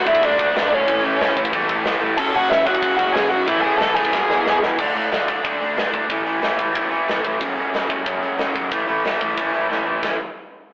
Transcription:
0.06 picked electric bass D2, overdriven electric guitar D3 A3 D4, lead electric guitar E4 E5, kick
0.15 kick
0.22 picked electric bass D2, overdriven electric guitar D3 A3 D4, lead electric guitar D4 D5, kick, open hi-hat
0.39 picked electric bass D2, overdriven electric guitar D3 A3 D4, kick
0.55 picked electric bass D2, overdriven electric guitar D3 A3 D4, snare, open hi-hat
0.72 picked electric bass D2, overdriven electric guitar D3 A3 D4, lead electric guitar C#4 C#5
0.88 picked electric bass A1, overdriven electric guitar A2 E3 A3, kick, open hi-hat
1.04 picked electric bass A1, overdriven electric guitar A2 E3 A3
1.21 picked electric bass A1, overdriven electric guitar A2 E3 A3, snare, open hi-hat
1.37 picked electric bass A1, overdriven electric guitar A2 E3 A3, kick
1.45 kick
1.53 picked electric bass E2, overdriven electric guitar A2 E3 A3, kick, open hi-hat
1.69 picked electric bass A1, overdriven electric guitar A2 E3 A3, kick
1.85 picked electric bass A1, overdriven electric guitar A2 E3 A3, snare, open hi-hat
2.02 picked electric bass A1, overdriven electric guitar A2 E3 A3
2.17 picked electric bass F#1, overdriven electric guitar F#2 C#3 F#3, lead electric guitar A4 A5, kick, crash
2.34 picked electric bass F#1, overdriven electric guitar F#2 C#3 F#3, lead electric guitar F#4 F#5
2.50 picked electric bass F#1, overdriven electric guitar F#2 C#3 F#3, lead electric guitar E4 E5, snare, open hi-hat
2.65 picked electric bass F#1, overdriven electric guitar F#2 C#3 F#3, lead electric guitar F#4 F#5, kick
2.75 kick
2.82 picked electric bass F#1, overdriven electric guitar F#2 C#3 F#3, kick, open hi-hat
2.97 picked electric bass F#1, overdriven electric guitar F#2 C#3 F#3, lead electric guitar F#4 F#5, kick
3.13 picked electric bass F#1, overdriven electric guitar F#2 C#3 F#3, lead electric guitar G#4 G#5, snare, open hi-hat
3.28 picked electric bass B1, overdriven electric guitar C#3 F#3, lead electric guitar F#4 F#5
3.33 overdriven electric guitar F#2
3.46 picked electric bass A1, overdriven electric guitar A2 E3 A3, lead electric guitar E4 E5, kick, open hi-hat
3.61 picked electric bass A1, overdriven electric guitar A2 E3 A3, lead electric guitar G#4 G#5
3.78 picked electric bass A1, overdriven electric guitar A2 E3 A3, lead electric guitar A4 A5, snare, open hi-hat
3.95 picked electric bass A1, overdriven electric guitar A2 E3 A3, lead electric guitar G#4 G#5, kick
4.05 kick
4.13 picked electric bass E1, overdriven electric guitar E2 B2 E3, kick, snare
4.29 picked electric bass E1, overdriven electric guitar E2 B2 E3, snare
4.46 picked electric bass E1, overdriven electric guitar E2 B2 E3, snare
4.63 picked electric bass E2, overdriven electric guitar E2 B2 E3, snare
4.78 picked electric bass D2, overdriven electric guitar D3 A3 D4, kick, crash
4.95 picked electric bass A2, overdriven electric guitar D3 A3 D4, open hi-hat
5.11 picked electric bass D2, overdriven electric guitar D3 A3 D4, snare, open hi-hat
5.28 overdriven electric guitar D3 A3 D4, kick, open hi-hat
5.45 picked electric bass D3, overdriven electric guitar D3 A3 D4, kick, open hi-hat
5.60 picked electric bass D2, overdriven electric guitar D3 A3 D4, open hi-hat
5.77 picked electric bass D2, overdriven electric guitar D3 A3 D4, snare, open hi-hat
5.93 picked electric bass D2, overdriven electric guitar D3 A3 D4, kick, open hi-hat
6.09 picked electric bass A1, overdriven electric guitar A2 E3 A3, kick, open hi-hat
6.26 picked electric bass A1, overdriven electric guitar A2 E3 A3, open hi-hat
6.42 picked electric bass F#1, overdriven electric guitar A2 E3 A3, snare, open hi-hat
6.58 picked electric bass A1, overdriven electric guitar A2 E3 A3, kick, open hi-hat
6.75 picked electric bass F#1, overdriven electric guitar A2 E3 A3, kick, open hi-hat
6.91 picked electric bass F#1, overdriven electric guitar A2 E3 A3, open hi-hat
7.08 picked electric bass A1, overdriven electric guitar A2 E3 A3, snare, open hi-hat
7.24 picked electric bass A1, overdriven electric guitar A2 E3 A3, kick, open hi-hat
7.41 picked electric bass F#1, overdriven electric guitar F#2 C#3 F#3, kick, open hi-hat
7.57 picked electric bass C#2, overdriven electric guitar F#2 C#3 F#3, open hi-hat
7.73 picked electric bass F#1, overdriven electric guitar F#2 C#3 F#3, snare, open hi-hat
7.89 overdriven electric guitar F#2 C#3 F#3, kick, open hi-hat
8.06 overdriven electric guitar F#2 C#3 F#3, picked electric bass F#2, kick, open hi-hat
8.23 picked electric bass F#1, overdriven electric guitar F#2 C#3 F#3, open hi-hat
8.38 picked electric bass F#1, overdriven electric guitar F#2 C#3 F#3, snare, open hi-hat
8.55 picked electric bass G#1, overdriven electric guitar F#2 C#3 F#3, kick, open hi-hat
8.71 picked electric bass A1, overdriven electric guitar A2 E3 A3, kick, open hi-hat
8.88 picked electric bass A1, overdriven electric guitar A2 E3 A3, open hi-hat
9.04 picked electric bass F#1, overdriven electric guitar A2 E3 A3, snare, open hi-hat
9.21 picked electric bass A1, overdriven electric guitar A2 E3 A3, kick, open hi-hat
9.37 picked electric bass F#1, overdriven electric guitar A2 E3 A3, kick, open hi-hat
9.53 picked electric bass F#1, overdriven electric guitar A2 E3 A3, open hi-hat
9.69 picked electric bass A1, overdriven electric guitar A2 E3 A3, snare
9.85 picked electric bass A1, overdriven electric guitar A2 E3 A3, floor tom
10.02 picked electric bass A1, overdriven electric guitar A2 E3 A3, kick, snare, splash

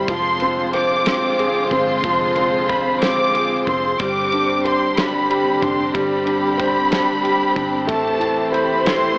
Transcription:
Already playing: grand piano G3 E4 G4, string section C5
0.08 fingered electric bass F1, string section D3 G#3 C4 F4, grand piano F3, violin section C6, kick, ride
0.40 grand piano C4, ride
0.73 grand piano C5, violin section D6, ride
1.06 grand piano C4, snare, ride
1.39 grand piano G#4, ride
1.71 fingered electric bass G1, grand piano C4, violin section C6, kick, ride
2.04 fingered electric bass F1, grand piano F3, kick, ride
2.36 grand piano C4, ride
2.69 grand piano C5, violin section B5, kick, ride
3.01 grand piano C4, violin section D6, snare, ride
3.34 grand piano G#4, ride
3.67 fingered electric bass F1, grand piano C4, violin section C6, kick, ride
3.99 fingered electric bass G1, string section D3 G3 C4 G4, grand piano G3, violin section D6, kick, ride
4.32 grand piano D4, ride
4.65 grand piano C5, violin section C6, ride
4.97 grand piano D4, violin section B5, snare, ride
5.30 grand piano G4, ride
5.62 fingered electric bass F1, grand piano D4, violin section C6, kick, ride
5.94 fingered electric bass G1, grand piano G3, violin section B5, kick, ride
6.26 grand piano D4, ride
6.58 grand piano C5, kick, ride
6.91 grand piano D4, snare, ride
7.23 grand piano G4, ride
7.56 fingered electric bass G1, grand piano D4, kick, ride
7.87 fingered electric bass A1, string section E3 A3 C5, grand piano A3, violin section A5, kick, ride
8.20 grand piano E4, ride
8.52 grand piano C5, violin section B5, ride
8.86 grand piano E4, violin section C6, snare, ride

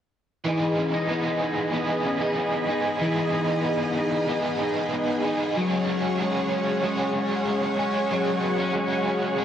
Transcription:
0.45 overdriven electric guitar E3 B3 D#4, clean electric guitar E3, string machine G#4 D#5 G#5 B5
0.49 overdriven electric guitar G#4
0.78 clean electric guitar C#4
0.94 clean electric guitar D#4
1.08 overdriven electric guitar E3 B3, clean electric guitar B3
1.12 overdriven electric guitar D#4 G#4
1.41 clean electric guitar D#4
1.73 overdriven electric guitar E3 B3 D#4, clean electric guitar B3
1.77 overdriven electric guitar G#4
2.05 clean electric guitar C#4
2.21 clean electric guitar D#4
2.37 clean electric guitar B3
2.68 clean electric guitar D#4, overdriven electric guitar D#4 G#4
2.74 overdriven electric guitar B3
2.99 overdriven electric guitar E3 B3, clean electric guitar E3
3.05 overdriven electric guitar D#4 G#4
3.33 clean electric guitar D#4
3.65 clean electric guitar B3
3.97 clean electric guitar D#4
4.28 overdriven electric guitar E3 B3 D#4 G#4, clean electric guitar B3
4.61 clean electric guitar D#4
4.93 clean electric guitar B3
5.23 clean electric guitar D#4, overdriven electric guitar D#4 G#4
5.29 overdriven electric guitar B3
5.56 overdriven electric guitar F#3 G#3 C#4 G#4, clean electric guitar F#3, string machine G#4 C#5 F#5 C#6
5.89 clean electric guitar C#4
6.18 overdriven electric guitar F#3 G#3, clean electric guitar G#3
6.22 overdriven electric guitar C#4 G#4
6.52 clean electric guitar C#4
6.83 overdriven electric guitar F#3 G#3 C#4, clean electric guitar G#3
6.87 overdriven electric guitar G#4
7.15 clean electric guitar C#4
7.47 clean electric guitar G#3
7.79 clean electric guitar C#4, overdriven electric guitar C#4 G#4
7.85 overdriven electric guitar G#3
8.11 overdriven electric guitar F#3 G#3 C#4, clean electric guitar F#3
8.15 overdriven electric guitar G#4
8.43 clean electric guitar B3
8.59 clean electric guitar C#4
8.74 overdriven electric guitar F#3 G#3 C#4, clean electric guitar G#3
8.80 overdriven electric guitar G#4
9.07 clean electric guitar C#4
9.38 overdriven electric guitar F#3 G#3 C#4, clean electric guitar G#3

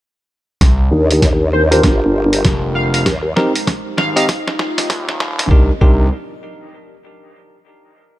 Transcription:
0.61 analog synth bass C2, analog synth pad C4 G4 A#4 D#6, kick, snare, closed hi-hat
0.91 wobble bass D#2, tine electric piano D4 D#4 G4 A#4
1.11 closed hi-hat
1.22 kick, snare, closed hi-hat
1.53 analog synth lead C5
1.71 tine electric piano D4 F4 G4 A#4, analog synth lead C5, closed hi-hat
1.83 wobble bass G1, analog synth pad G3 D4 F4, kick, snare, closed hi-hat
2.33 closed hi-hat
2.45 analog synth bass F1, kick, snare, closed hi-hat
2.75 analog synth lead F5
2.94 analog synth lead F5, closed hi-hat
3.06 wobble bass D#2, analog synth pad G#3 D#4 G4 C5, kick, snare, closed hi-hat
3.36 tine electric piano C4 D#4 G4 A#4, snare
3.56 closed hi-hat
3.67 kick, snare, closed hi-hat
3.97 analog synth bass G#1, analog synth lead F5, snare
4.16 tine electric piano C4 D#4 G4 D#5, analog synth lead F5, closed hi-hat
4.28 analog synth pad A3 F4, kick, snare, closed hi-hat
4.48 snare
4.59 snare
4.78 snare, closed hi-hat
4.90 analog synth bass D#1, kick, snare, closed hi-hat
5.09 snare
5.20 snare
5.39 snare, closed hi-hat
5.51 analog synth bass C2, analog synth pad C4 G4 A#4 D#5, tine electric piano D4 D#4 G4 A#4, kick
5.81 analog synth bass C2, tine electric piano D4 D#4 G4 A#4, kick

